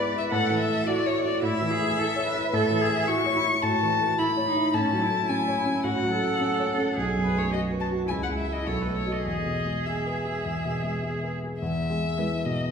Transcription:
Already playing: grand piano G#2 G#3 B3 E4 B4, cello B4, violin D5
0.14 grand piano E4, violin E5
0.31 grand piano A2, cello A4, violin F#5
0.50 grand piano E3
0.59 violin E5
0.69 grand piano A3
0.87 grand piano E4, cello F#4, violin D5
1.06 grand piano C#5, violin C#5
1.24 grand piano E4, violin D5
1.42 grand piano A2, cello E4, violin E5
1.61 grand piano E3
1.71 cello G#4
1.80 grand piano A3
1.97 grand piano E4, cello A4
2.16 grand piano C#5
2.26 cello B4
2.35 grand piano E4
2.53 grand piano A2, cello A4, violin E5
2.71 grand piano E3
2.81 cello G#4
2.89 grand piano A3
3.07 grand piano E4, cello F#4, violin C#6
3.26 grand piano C#5
3.35 cello E4
3.44 grand piano E4
3.63 grand piano A2, cello F#4, violin A5
3.82 grand piano E3
4.00 grand piano A3
4.18 cello E4, grand piano E4, violin B5
4.37 grand piano C#5
4.46 cello D#4
4.56 grand piano E4
4.74 grand piano A2, cello C#4, violin A5
4.93 grand piano F#3
5.02 cello E4
5.11 grand piano A3
5.29 grand piano C#4, violin G#5
5.48 grand piano C#5
5.66 grand piano C#4
5.84 grand piano A2, cello F#4, violin F#5
6.03 grand piano F#3
6.11 cello A4
6.21 grand piano A3
6.41 grand piano C#4
6.59 grand piano C#5
6.78 grand piano C#4
6.97 grand piano B1, cello G#4
7.16 grand piano F#2
7.24 violin B4
7.35 grand piano A3, violin C#5
7.52 cello F#4, grand piano F#4, violin D#5
7.72 grand piano B4
7.80 violin A5
7.91 grand piano F#4
8.08 grand piano C#2, cello E4, violin G#5
8.23 violin F#5
8.29 grand piano G#3
8.38 violin E5
8.47 grand piano E4 E5
8.52 violin D#5
8.67 grand piano B1, cello A4, violin C#5
8.82 violin B4
8.87 grand piano A3
8.96 violin C#5
9.06 grand piano F#4 D#5
9.12 violin D#5
9.26 grand piano E2, cello G#4, violin D#5
9.46 grand piano B2
9.66 grand piano G#3
9.86 grand piano G#4, violin E5
10.06 grand piano B4
10.25 grand piano G#4
10.45 grand piano E2
10.65 grand piano B2
10.84 grand piano G#3
11.03 grand piano G#4
11.23 grand piano B4
11.43 grand piano G#4
11.61 grand piano E2, violin E5
11.90 grand piano G#3
12.18 cello G#3, grand piano E4 B4
12.45 grand piano B2, violin D#5

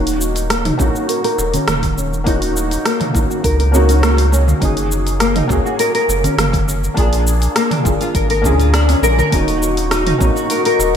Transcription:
Already playing: sub bass D#1, felt piano A#3 C#4 D#4 F#4, nylon-string guitar D#4
0.07 open hi-hat, shaker
0.21 shaker
0.35 open hi-hat, darbuka ka, shaker
0.50 nylon-string guitar A#3, cross-stick, open hi-hat, shaker
0.65 nylon-string guitar D#4, mid tom, open hi-hat, darbuka ka, darbuka tek
0.78 sub bass A#1, felt piano A#3 C#4 D#4 F#4, kick, darbuka tek, shaker
0.94 nylon-string guitar F#4, shaker
1.09 nylon-string guitar A#4, open hi-hat, shaker
1.24 nylon-string guitar A#4, open hi-hat, darbuka ka
1.38 sub bass D#1, darbuka tek, shaker
1.53 nylon-string guitar C#4, open hi-hat, darbuka dum, shaker
1.67 sub bass D#1, nylon-string guitar A#3, cross-stick, mid tom, open hi-hat, shaker
1.83 kick, open hi-hat, darbuka tek, darbuka dum, shaker
1.97 nylon-string guitar C#4, shaker
2.13 shaker
2.24 felt piano A#3 C#4 D#4, nylon-string guitar D#4, kick, open hi-hat, shaker
2.28 felt piano F#4
2.42 open hi-hat, shaker
2.57 shaker
2.71 open hi-hat, darbuka ka, shaker
2.85 nylon-string guitar A#3, cross-stick, open hi-hat, shaker
3.00 nylon-string guitar D#4, mid tom, open hi-hat, darbuka ka, darbuka tek, darbuka dum
3.14 sub bass A#1, felt piano A#3 C#4 D#4 F#4, kick, darbuka tek, shaker
3.30 nylon-string guitar F#4, shaker
3.44 sub bass C#2, nylon-string guitar A#4, kick, open hi-hat, shaker
3.59 nylon-string guitar A#4, open hi-hat, darbuka tek
3.72 felt piano A#3 C#4 D#4 F#4, shaker
3.89 nylon-string guitar C#4, open hi-hat, shaker
4.03 nylon-string guitar A#3, cross-stick, open hi-hat, shaker
4.17 open hi-hat, darbuka tek, shaker
4.32 nylon-string guitar C#4, darbuka tek, shaker
4.48 darbuka dum, shaker
4.60 sub bass F#1, felt piano A#3 C#4 F#4, nylon-string guitar D#4, kick, open hi-hat, shaker
4.64 felt piano G#4
4.77 open hi-hat, shaker
4.92 shaker
5.06 open hi-hat, darbuka ka, shaker
5.20 nylon-string guitar A#3, cross-stick, open hi-hat, shaker
5.35 nylon-string guitar D#4, mid tom, open hi-hat, darbuka ka, darbuka tek
5.48 sub bass C#2, felt piano A#3 C#4 F#4 G#4, kick, darbuka tek, shaker
5.65 nylon-string guitar F#4, shaker
5.79 nylon-string guitar A#4, open hi-hat, shaker
5.95 nylon-string guitar A#4, open hi-hat, darbuka ka
6.09 sub bass F#1, darbuka tek, shaker
6.24 nylon-string guitar C#4, open hi-hat, darbuka dum, shaker
6.38 sub bass F#1, nylon-string guitar A#3, cross-stick, mid tom, open hi-hat, shaker
6.53 kick, open hi-hat, darbuka tek, darbuka dum, shaker
6.68 nylon-string guitar C#4, shaker
6.84 shaker
6.94 sub bass A#1, felt piano A#3 D4 F4 G#4, nylon-string guitar D4, kick, open hi-hat, shaker
7.13 open hi-hat, shaker
7.27 shaker
7.42 open hi-hat, darbuka ka, shaker
7.56 nylon-string guitar A#3, cross-stick, open hi-hat, shaker
7.71 nylon-string guitar D4, mid tom, open hi-hat, darbuka ka, darbuka tek, darbuka dum
7.84 sub bass F1, felt piano A#3 D4 F4 G#4, kick, darbuka tek, shaker
8.01 nylon-string guitar F4, open hi-hat, shaker
8.15 sub bass G#1, nylon-string guitar A#4, kick, open hi-hat, shaker
8.30 nylon-string guitar A#4, open hi-hat, darbuka tek
8.42 sub bass D2, felt piano D3 A#3 F4, nylon-string guitar C#4, kick, mid tom, shaker
8.46 felt piano G#4
8.60 nylon-string guitar F4, open hi-hat, shaker
8.74 nylon-string guitar D4, cross-stick, open hi-hat, shaker
8.89 nylon-string guitar C#4, open hi-hat, darbuka tek, shaker
9.02 sub bass A#1, nylon-string guitar A#4, darbuka tek, shaker
9.18 nylon-string guitar A#4, darbuka dum, shaker
9.30 sub bass D#1, felt piano A#3 C#4 D#4 F#4, nylon-string guitar D#4, analog synth pad F#4 D#5 C#6, kick, open hi-hat, shaker
9.48 open hi-hat, shaker
9.63 shaker
9.77 open hi-hat, darbuka ka, shaker
9.91 nylon-string guitar D#4, cross-stick, open hi-hat, shaker
10.06 nylon-string guitar D#4, mid tom, open hi-hat, darbuka ka, darbuka tek
10.18 sub bass A#1, felt piano A#3 C#4 D#4 F#4, kick, darbuka tek, shaker
10.36 nylon-string guitar F#4, shaker
10.50 nylon-string guitar A#4, open hi-hat, shaker
10.65 nylon-string guitar A#4, open hi-hat, darbuka ka
10.79 sub bass D#1, darbuka tek, shaker

